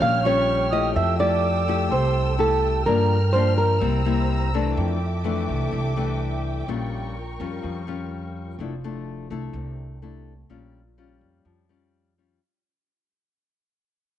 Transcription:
0.00 0.92 A#1 medium
0.00 0.94 A#2 medium
0.00 0.21 G3 medium
0.00 0.21 C#4 medium
0.00 0.22 F4 medium
0.00 0.93 C#5 medium
0.00 0.23 F5 medium
0.00 3.77 G5 medium
0.00 0.93 F6 medium
0.00 0.22 F6 medium
0.23 0.68 G3 medium
0.23 0.69 C#4 medium
0.23 0.69 F4 medium
0.23 0.74 C#5 medium
0.23 0.68 C#6 medium
0.70 1.16 A3 soft
0.70 1.16 E4 soft
0.70 1.16 G4 medium
0.70 0.96 D#5 medium
0.70 0.93 D#6 medium
0.95 1.87 F2 medium
0.95 1.89 F3 medium
0.95 2.84 A4 medium
0.95 1.18 E5 medium
0.95 2.84 E6 medium
0.95 1.18 E6 medium
1.18 1.63 A3 medium
1.18 1.63 E4 medium
1.18 1.64 G4 soft
1.18 1.92 D5 medium
1.18 1.86 D6 medium
1.68 2.35 A3 medium
1.68 2.36 E4 medium
1.68 2.36 G4 medium
1.90 2.82 C2 medium
1.90 2.84 C3 medium
1.90 2.40 C5 medium
1.90 2.35 C6 medium
2.38 2.82 A3 soft
2.38 2.82 E4 medium
2.38 2.83 G4 soft
2.38 2.86 A4 medium
2.38 2.83 A5 medium
2.85 3.79 G2 medium
2.85 3.78 G2 medium
2.85 3.17 F3 medium
2.85 3.17 A#3 soft
2.85 3.17 D4 medium
2.85 3.80 A#4 medium
2.85 3.32 A#4 medium
2.85 3.30 A#5 medium
2.85 3.80 F6 medium
3.33 3.79 F3 medium
3.33 3.80 A#3 soft
3.33 3.80 D4 medium
3.33 3.57 C5 medium
3.33 3.56 C6 medium
3.58 4.49 A#4 medium
3.58 4.49 A#5 medium
3.80 4.73 C2 medium
3.80 4.74 C3 medium
3.80 4.01 G3 medium
3.80 4.01 A#3 medium
3.80 4.01 E4 medium
3.80 4.75 C5 medium
3.80 4.75 A#5 medium
3.80 4.75 E6 medium
4.05 4.49 G3 medium
4.05 4.49 A#3 medium
4.05 4.50 E4 medium
4.54 4.97 E3 medium
4.54 4.97 A3 medium
4.54 4.98 D4 medium
4.75 5.70 F2 medium
4.75 5.45 F2 medium
4.75 6.65 A4 medium
4.75 6.65 E5 medium
4.75 8.53 G5 medium
4.75 6.65 D6 medium
5.24 5.92 E3 medium
5.24 5.92 A3 medium
5.24 5.93 D4 medium
5.49 5.71 C2 medium
5.72 6.64 C2 medium
5.72 6.65 C3 medium
5.97 6.64 E3 medium
5.97 6.64 A3 medium
5.97 6.64 D4 medium
6.67 7.35 A#1 medium
6.67 7.61 A#2 soft
6.67 7.15 G3 medium
6.67 7.15 C#4 soft
6.67 7.16 F4 medium
6.67 8.56 A#4 medium
6.67 8.56 C#6 medium
7.40 7.62 F2 medium
7.40 7.83 G3 medium
7.40 7.84 C#4 medium
7.40 7.84 F4 medium
7.63 8.55 F2 medium
7.63 8.56 F3 medium
7.87 8.55 G3 soft
7.87 8.55 C#4 medium
7.87 8.55 F4 medium
8.59 9.26 F1 medium
8.59 9.52 F3 soft
8.59 8.73 A3 soft
8.59 8.73 D4 medium
8.59 8.73 E4 medium
8.84 9.27 A3 soft
8.84 9.27 D4 soft
8.84 9.27 E4 soft
9.30 9.52 C2 medium
9.30 9.98 A3 medium
9.30 9.98 D4 medium
9.30 9.98 E4 medium
9.53 10.45 C2 medium
9.53 10.47 C3 medium
10.02 10.32 A3 soft
10.02 10.32 D4 soft
10.02 10.33 E4 soft
10.49 11.17 A#1 medium
10.49 11.42 A#2 soft
10.49 10.80 G3 medium
10.49 10.80 C#4 medium
10.49 10.80 F4 soft
10.98 11.65 G3 medium
10.98 11.65 C#4 medium
10.98 11.65 F4 medium
11.21 11.43 F2 medium
11.45 12.36 F2 medium
11.45 12.38 F3 medium
11.69 12.13 G3 medium
11.69 12.13 C#4 soft
11.69 12.13 F4 medium
12.18 12.39 G3 soft
12.18 12.39 C#4 soft
12.18 12.39 F4 medium

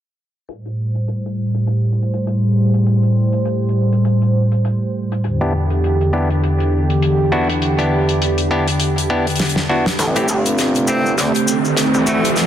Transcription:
0.48 5.20 A2 medium
0.48 5.20 G3 medium
0.48 5.20 C5 medium
0.48 closed hi-hat medium
0.66 closed hi-hat medium
0.95 closed hi-hat medium
1.08 closed hi-hat medium
1.26 closed hi-hat medium
1.55 closed hi-hat medium
1.67 closed hi-hat medium
1.84 closed hi-hat soft
1.93 closed hi-hat soft
2.02 closed hi-hat soft
2.14 closed hi-hat medium
2.27 closed hi-hat medium
2.74 closed hi-hat medium
2.87 closed hi-hat medium
3.03 closed hi-hat medium
3.33 closed hi-hat medium
3.45 closed hi-hat medium
3.69 closed hi-hat soft
3.93 closed hi-hat medium
4.05 closed hi-hat medium
4.22 closed hi-hat soft
4.52 closed hi-hat medium
4.65 closed hi-hat medium
5.12 closed hi-hat medium
5.24 9.95 E2 medium
5.24 9.95 D3 medium
5.24 9.95 G4 medium
5.24 closed hi-hat medium
5.41 5.53 B3 medium
5.41 5.53 D4 medium
5.41 5.53 E4 medium
5.41 5.53 G4 medium
5.41 closed hi-hat soft
5.70 closed hi-hat medium
5.84 closed hi-hat medium
6.01 closed hi-hat medium
6.13 6.29 B3 medium
6.13 6.29 D4 medium
6.13 6.29 E4 medium
6.13 6.29 G4 medium
6.30 closed hi-hat medium
6.44 closed hi-hat medium
6.60 closed hi-hat soft
6.90 closed hi-hat medium
7.02 closed hi-hat medium
7.32 7.48 B3 medium
7.32 7.48 D4 medium
7.32 7.48 E4 medium
7.32 7.48 F#4 loud
7.50 closed hi-hat medium
7.62 closed hi-hat medium
7.79 8.48 B3 medium
7.79 8.48 D4 medium
7.79 8.48 E4 medium
7.79 8.48 G4 medium
7.79 closed hi-hat medium
8.09 closed hi-hat medium
8.22 closed hi-hat medium
8.38 closed hi-hat soft
8.51 8.67 B3 medium
8.51 8.67 D4 medium
8.51 8.67 E4 medium
8.51 8.67 G4 loud
8.68 closed hi-hat medium
8.80 closed hi-hat medium
8.98 closed hi-hat medium
9.10 9.26 B3 medium
9.10 9.26 D4 medium
9.10 9.26 E4 medium
9.10 9.26 G4 loud
9.27 closed hi-hat soft
9.30 closed hi-hat soft
9.36 closed hi-hat soft
9.39 snare medium
9.39 closed hi-hat medium
9.45 closed hi-hat soft
9.49 closed hi-hat medium
9.56 snare medium
9.69 9.86 B3 medium
9.69 9.86 D4 medium
9.69 9.86 E4 medium
9.69 9.86 F#4 medium
9.86 snare medium
9.86 closed hi-hat medium
9.98 10.27 A1 loud
9.98 12.47 A3 medium
9.98 12.47 C4 medium
9.98 12.47 G4 medium
9.98 snare soft
9.98 closed hi-hat medium
9.98 riser medium
9.98 cabasa soft
10.16 10.28 A3 medium
10.16 10.28 C4 medium
10.16 10.28 E4 medium
10.16 10.28 G4 medium
10.16 closed hi-hat medium
10.16 cabasa soft
10.28 11.16 G1 loud
10.28 cabasa medium
10.46 closed hi-hat medium
10.46 cabasa soft
10.58 snare soft
10.58 closed hi-hat medium
10.58 cabasa soft
10.75 closed hi-hat soft
10.75 cabasa soft
10.88 11.04 A3 medium
10.88 11.04 C4 medium
10.88 11.12 C4 medium
10.88 11.04 E4 medium
10.88 11.04 G4 medium
10.88 cabasa medium
11.06 cabasa soft
11.18 11.33 D2 loud
11.18 snare medium
11.18 closed hi-hat medium
11.18 cabasa medium
11.35 closed hi-hat medium
11.35 cabasa soft
11.48 cabasa loud
11.65 cabasa soft
11.77 snare medium
11.77 closed hi-hat medium
11.77 cabasa medium
11.94 12.35 D2 loud
11.94 cabasa soft
12.07 12.23 A3 medium
12.07 12.30 A3 medium
12.07 12.23 C4 medium
12.07 12.23 E4 medium
12.07 12.23 F#4 loud
12.07 cabasa loud
12.25 closed hi-hat medium
12.25 cabasa soft
12.35 12.47 C#2 loud
12.35 snare medium
12.35 closed hi-hat medium
12.35 cabasa medium

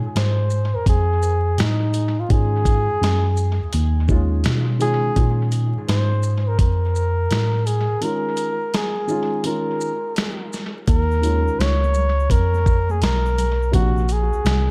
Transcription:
0.03 0.08 G#2 soft
0.16 0.72 G#2 medium
0.16 0.76 C5 medium
0.16 snare medium
0.16 closed hi-hat medium
0.50 shaker soft
0.75 0.80 F2 soft
0.75 0.87 A#4 medium
0.86 1.58 F2 medium
0.86 1.62 G#4 medium
0.86 kick medium
0.86 closed hi-hat medium
1.23 shaker soft
1.58 2.15 A2 medium
1.58 2.21 D#4 medium
1.58 snare loud
1.58 closed hi-hat medium
1.94 closed hi-hat medium
1.94 shaker medium
2.20 2.33 F4 medium
2.29 2.86 G#2 medium
2.29 2.84 D#3 medium
2.29 2.84 G#3 medium
2.29 2.85 C#4 medium
2.29 2.86 F4 medium
2.29 3.74 G#4 loud
2.29 kick loud
2.29 closed hi-hat medium
2.65 kick medium
2.65 closed hi-hat medium
2.65 shaker medium
3.02 3.58 F#2 medium
3.02 snare medium
3.02 closed hi-hat medium
3.37 shaker soft
3.61 3.66 D#2 soft
3.73 4.45 D#2 medium
3.73 closed hi-hat medium
4.08 4.63 D#3 medium
4.08 4.63 G#3 medium
4.08 4.64 C#4 medium
4.08 4.65 F4 medium
4.08 kick medium
4.08 shaker soft
4.44 5.01 B2 medium
4.44 snare loud
4.44 closed hi-hat medium
4.79 5.08 D#3 medium
4.79 5.08 G#3 medium
4.79 5.09 C#4 medium
4.79 5.10 F4 medium
4.79 5.48 G#4 loud
4.79 closed hi-hat medium
4.79 shaker medium
5.05 5.09 B2 soft
5.15 5.72 A#2 medium
5.15 6.18 D#3 medium
5.15 6.18 G#3 medium
5.15 6.19 C#4 soft
5.15 6.20 F4 medium
5.15 kick loud
5.15 closed hi-hat medium
5.52 closed hi-hat medium
5.52 shaker soft
5.88 6.56 G#2 medium
5.88 6.49 C5 medium
5.88 snare medium
5.88 closed hi-hat medium
6.23 shaker soft
6.48 6.59 A#4 medium
6.59 7.27 F2 medium
6.59 7.68 A#4 medium
6.59 kick medium
6.59 closed hi-hat medium
6.96 shaker soft
7.31 7.87 A2 medium
7.31 snare loud
7.31 closed hi-hat medium
7.66 8.04 G#4 medium
7.66 closed hi-hat medium
7.66 shaker medium
8.01 8.56 D#3 medium
8.01 8.56 G#3 soft
8.01 8.57 C#4 soft
8.01 8.57 F4 medium
8.01 8.77 A#4 loud
8.01 closed hi-hat medium
8.37 closed hi-hat soft
8.37 shaker medium
8.74 9.45 G#4 medium
8.74 snare medium
8.74 closed hi-hat medium
9.07 9.42 D#3 medium
9.07 9.43 G#3 medium
9.07 9.44 C#4 medium
9.07 9.46 F4 medium
9.07 shaker soft
9.43 9.89 D#3 medium
9.43 9.90 G#3 medium
9.43 9.90 C#4 medium
9.43 9.91 F4 medium
9.43 10.48 A#4 medium
9.43 closed hi-hat medium
9.81 shaker soft
10.16 snare loud
10.16 closed hi-hat medium
10.53 snare soft
10.53 shaker medium
10.88 11.44 D#2 loud
10.88 11.61 A#4 loud
10.88 kick loud
10.88 closed hi-hat medium
10.88 shaker medium
11.11 shaker soft
11.21 11.67 D#3 medium
11.21 11.68 G#3 medium
11.21 11.69 C#4 medium
11.21 11.69 F4 medium
11.21 closed hi-hat medium
11.21 shaker medium
11.21 shaker soft
11.47 11.52 C#2 soft
11.47 shaker soft
11.59 12.27 C#2 medium
11.59 12.32 C#5 loud
11.59 snare medium
11.59 closed hi-hat medium
11.59 shaker medium
11.84 high conga medium
11.84 shaker soft
11.94 low conga medium
11.94 shaker soft
11.96 shaker soft
12.20 shaker soft
12.30 13.02 F2 medium
12.30 12.93 A#4 loud
12.30 kick medium
12.30 closed hi-hat medium
12.30 high conga soft
12.30 low conga medium
12.30 shaker medium
12.54 high conga soft
12.54 shaker soft
12.66 kick medium
12.66 shaker soft
12.66 shaker medium
12.89 13.04 G#4 medium
12.89 high conga medium
12.89 shaker soft
13.02 13.70 B1 medium
13.02 13.74 A#4 loud
13.02 snare loud
13.02 closed hi-hat medium
13.02 shaker medium
13.26 shaker soft
13.38 closed hi-hat medium
13.38 low conga medium
13.38 shaker soft
13.38 shaker medium
13.62 shaker soft
13.71 14.29 A#1 loud
13.71 14.01 C3 medium
13.71 14.01 F3 medium
13.71 14.02 A#3 medium
13.71 14.02 D4 medium
13.71 14.14 F#4 loud
13.71 kick medium
13.71 closed hi-hat medium
13.71 shaker medium
13.97 shaker soft
14.09 14.71 G#4 medium
14.09 closed hi-hat medium
14.09 shaker medium
14.09 shaker soft
14.33 shaker soft
14.45 14.71 C2 medium
14.45 snare medium
14.45 closed hi-hat medium
14.45 shaker medium

